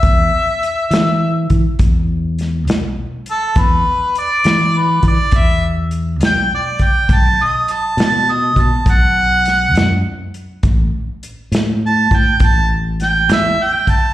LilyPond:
<<
  \new Staff \with { instrumentName = "Harmonica" } { \time 12/8 \key b \phrygian \tempo 4. = 68 e''2~ e''8 r2. a'8 | b'4 d''4 b'8 d''8 e''8 r4 g''8 d''8 g''8 | a''8 dis''8 a''8 a''8 dis''8 a''8 fis''2 r4 | r2 a''8 g''8 a''8 r8 g''8 e''8 g''8 a''8 | }
  \new Staff \with { instrumentName = "Fingered electric bass" } { \clef bass \time 12/8 \key b \phrygian e,8 r4 e4 e16 r16 e,4. b,,8 r4 | e,8 r4 e4 e16 r16 e,4. b,,8 r4 | b,,8 r4 b,4 b,16 r16 b,,4. fis,8 r4 | a,,8 r4 a,4 a,16 r16 a,,4. e,8 r4 | }
  \new DrumStaff \with { instrumentName = "Drums" } \drummode { \time 12/8 <hh bd>4 hh8 <hh sn>4 <hh bd>8 <hh bd>4 <hh sn>8 <hh sn>4 hh8 | <hh bd>4 hh8 <hh sn>4 <hh bd>8 <hh bd>4 hh8 <hh sn>4 <hh bd>8 | <hh bd>4 hh8 <hh sn>4 <hh bd>8 <hh bd>4 <hh sn>8 <hh sn>4 hh8 | <hh bd>4 hh8 <hh sn>4 <hh bd>8 <hh bd>4 <hh sn>8 <hh sn>4 <hh bd>8 | }
>>